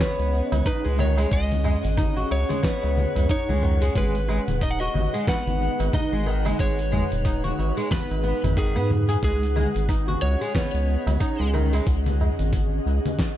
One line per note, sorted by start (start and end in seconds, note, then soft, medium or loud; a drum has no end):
0.00 0.65 B3 medium
0.00 3.92 C#4 medium
0.00 9.19 G#4 medium
0.00 0.70 C#5 loud
0.00 1.30 D#5 medium
0.00 13.37 F#5 medium
0.00 kick loud
0.00 snare medium
0.00 open hi-hat medium
0.00 low conga medium
0.00 cabasa soft
0.19 0.41 C#2 medium
0.19 open hi-hat soft
0.34 tabla tin medium
0.34 cabasa medium
0.52 0.62 C#2 loud
0.52 open hi-hat soft
0.52 tabla na medium
0.52 low conga medium
0.52 cabasa soft
0.66 0.84 D#4 loud
0.66 1.00 B4 medium
0.66 kick loud
0.66 open hi-hat medium
0.66 cabasa soft
0.85 1.26 C#2 loud
0.85 0.98 G#3 medium
0.99 1.17 D#3 medium
0.99 1.34 C#5 medium
0.99 tabla na medium
0.99 tabla tin medium
0.99 low conga medium
0.99 cabasa medium
1.18 1.30 G#3 medium
1.18 open hi-hat soft
1.18 tabla na medium
1.18 cabasa soft
1.31 1.75 C#2 loud
1.31 1.50 G#3 medium
1.31 3.93 C#5 medium
1.31 2.32 D#5 loud
1.31 kick loud
1.31 open hi-hat medium
1.31 cabasa soft
1.52 open hi-hat soft
1.52 low conga medium
1.64 1.76 G#3 medium
1.64 tabla na medium
1.64 tabla tin medium
1.64 tabla ge medium
1.64 cabasa medium
1.84 2.25 G#1 loud
1.84 open hi-hat soft
1.84 tabla tin soft
1.84 cabasa soft
1.97 2.16 D#4 loud
1.97 kick medium
1.97 open hi-hat medium
1.97 low conga medium
1.97 cabasa soft
2.17 2.48 F#4 medium
2.31 2.45 C#2 medium
2.31 3.30 C#5 loud
2.31 tabla na medium
2.31 cabasa medium
2.49 2.62 G#3 medium
2.49 open hi-hat soft
2.49 low conga medium
2.49 cabasa soft
2.63 3.28 B3 medium
2.63 kick loud
2.63 snare medium
2.63 open hi-hat medium
2.63 cabasa soft
2.83 3.06 C#2 medium
2.83 open hi-hat soft
2.83 tabla na medium
2.97 low conga medium
2.97 cabasa medium
3.15 3.26 C#2 medium
3.15 open hi-hat soft
3.15 tabla na medium
3.15 tabla ge medium
3.15 cabasa soft
3.29 3.48 D#4 loud
3.29 3.98 C#5 loud
3.29 kick loud
3.29 open hi-hat medium
3.29 cabasa soft
3.49 3.90 C#2 medium
3.49 3.62 G#3 medium
3.49 low conga medium
3.62 3.81 D#3 medium
3.62 tabla ge medium
3.62 cabasa medium
3.82 3.94 G#3 medium
3.82 open hi-hat soft
3.82 cabasa soft
3.95 4.39 G#1 loud
3.95 9.19 G#3 medium
3.95 4.14 G#3 medium
3.95 9.20 D#4 medium
3.95 9.20 B4 loud
3.95 4.65 B4 loud
3.95 kick loud
3.95 open hi-hat medium
3.95 low conga medium
3.95 cabasa soft
4.15 open hi-hat soft
4.28 4.40 G#3 medium
4.28 tabla na medium
4.28 tabla tin medium
4.28 cabasa medium
4.47 4.89 D#1 loud
4.47 open hi-hat soft
4.47 tabla tin soft
4.47 low conga medium
4.47 cabasa soft
4.61 4.80 D#4 loud
4.61 4.70 D#5 medium
4.61 kick loud
4.61 open hi-hat soft
4.61 cabasa soft
4.71 4.78 F#5 medium
4.80 5.12 F#4 medium
4.80 5.25 D#5 loud
4.94 5.08 G#1 medium
4.94 tabla na medium
4.94 low conga medium
4.94 cabasa medium
5.14 5.26 G#3 medium
5.14 open hi-hat soft
5.14 cabasa soft
5.27 5.92 B3 medium
5.27 5.96 F#5 loud
5.27 kick loud
5.27 snare medium
5.27 open hi-hat medium
5.27 cabasa soft
5.46 5.69 G#1 medium
5.46 open hi-hat soft
5.46 low conga medium
5.61 tabla tin medium
5.61 cabasa medium
5.80 5.90 G#1 loud
5.80 open hi-hat soft
5.80 tabla na medium
5.80 cabasa soft
5.93 6.12 D#4 loud
5.93 6.62 D#5 loud
5.93 kick loud
5.93 open hi-hat medium
5.93 low conga medium
5.93 cabasa soft
6.12 6.53 G#1 medium
6.12 6.26 G#3 medium
6.26 6.45 D#3 medium
6.26 tabla na medium
6.26 tabla tin medium
6.26 cabasa medium
6.45 6.58 G#3 medium
6.45 open hi-hat soft
6.45 tabla na medium
6.45 low conga medium
6.45 cabasa soft
6.59 7.03 G#1 loud
6.59 6.78 G#3 medium
6.59 7.92 C#5 loud
6.59 kick loud
6.59 open hi-hat medium
6.59 cabasa soft
6.79 open hi-hat soft
6.92 7.03 G#3 medium
6.92 tabla na medium
6.92 tabla tin medium
6.92 tabla ge medium
6.92 low conga medium
6.92 cabasa medium
7.12 7.52 D#1 medium
7.12 open hi-hat soft
7.12 tabla tin soft
7.12 cabasa soft
7.25 7.43 D#4 loud
7.25 kick loud
7.25 open hi-hat soft
7.25 cabasa soft
7.44 7.75 F#4 medium
7.44 low conga medium
7.59 7.72 G#1 medium
7.59 tabla na medium
7.59 cabasa medium
7.77 7.90 G#3 medium
7.77 open hi-hat soft
7.77 cabasa soft
7.91 8.08 B3 medium
7.91 8.60 B4 loud
7.91 kick loud
7.91 snare medium
7.91 open hi-hat medium
7.91 low conga medium
7.91 cabasa soft
8.11 8.33 G#1 medium
8.11 open hi-hat soft
8.11 tabla na medium
8.24 8.42 B3 medium
8.24 cabasa medium
8.43 8.77 G#1 medium
8.43 open hi-hat soft
8.43 tabla na medium
8.43 tabla ge loud
8.43 low conga medium
8.43 cabasa soft
8.57 8.74 D#3 loud
8.57 9.23 G#4 medium
8.57 kick loud
8.57 open hi-hat medium
8.57 cabasa soft
8.76 9.17 G#2 medium
8.76 8.89 B3 loud
8.90 tabla ge medium
8.90 low conga medium
8.90 cabasa medium
9.09 9.17 G#4 loud
9.09 open hi-hat soft
9.09 cabasa soft
9.23 9.67 C#2 loud
9.23 9.41 G#3 medium
9.23 13.37 C#4 medium
9.23 13.37 G#4 medium
9.23 9.86 G#4 medium
9.23 13.37 D#5 medium
9.23 kick loud
9.23 open hi-hat medium
9.23 cabasa soft
9.43 open hi-hat soft
9.56 9.67 G#3 medium
9.56 tabla na medium
9.56 tabla tin medium
9.56 low conga medium
9.56 cabasa medium
9.75 10.16 G#1 medium
9.75 open hi-hat soft
9.75 tabla tin soft
9.75 cabasa soft
9.89 10.07 D#4 loud
9.89 kick medium
9.89 open hi-hat medium
9.89 cabasa soft
10.08 10.39 F#4 medium
10.08 low conga medium
10.22 10.36 C#2 medium
10.22 11.50 C#5 loud
10.22 tabla na medium
10.22 cabasa medium
10.41 10.54 G#3 medium
10.41 open hi-hat soft
10.41 cabasa soft
10.55 11.20 B3 medium
10.55 kick loud
10.55 snare medium
10.55 open hi-hat medium
10.55 low conga medium
10.55 cabasa soft
10.74 10.96 C#2 medium
10.74 open hi-hat soft
10.87 tabla tin soft
10.87 cabasa medium
11.07 11.17 C#2 loud
11.07 open hi-hat soft
11.07 tabla na medium
11.07 low conga medium
11.07 cabasa soft
11.20 11.39 D#4 loud
11.20 kick loud
11.20 open hi-hat medium
11.20 cabasa soft
11.39 11.81 C#2 medium
11.39 11.53 G#3 medium
11.54 11.72 D#3 medium
11.54 tabla na medium
11.54 tabla tin medium
11.54 low conga medium
11.54 cabasa medium
11.73 11.86 G#3 medium
11.73 open hi-hat soft
11.73 tabla na medium
11.73 cabasa soft
11.87 12.30 C#2 loud
11.87 kick loud
11.87 open hi-hat medium
11.87 cabasa soft
12.06 open hi-hat soft
12.06 low conga medium
12.20 tabla na medium
12.20 tabla tin medium
12.20 tabla ge medium
12.20 cabasa medium
12.39 12.80 G#1 loud
12.39 open hi-hat soft
12.39 tabla tin soft
12.39 cabasa soft
12.53 kick loud
12.53 open hi-hat medium
12.53 low conga medium
12.53 cabasa soft
12.86 13.00 C#2 medium
12.86 tabla na medium
12.86 cabasa medium
13.06 open hi-hat soft
13.06 low conga medium
13.06 cabasa soft
13.19 kick loud
13.19 snare medium
13.19 open hi-hat medium
13.19 cabasa soft